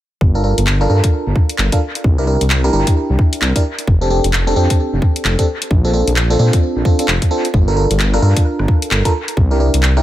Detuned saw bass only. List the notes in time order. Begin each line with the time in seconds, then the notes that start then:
0.21 G1
0.58 G1
0.90 G2
1.27 G1
1.58 G1
2.04 C2
2.41 C2
2.73 G1
3.10 C2
3.42 C2
3.87 F1
4.24 F1
4.56 F2
4.93 F1
5.25 F1
5.71 A#1
6.07 A#1
6.39 A#2
6.76 A#1
7.08 F1
7.54 G1
7.91 G1
8.22 G2
8.59 G1
8.91 G1
9.37 C2
9.74 C2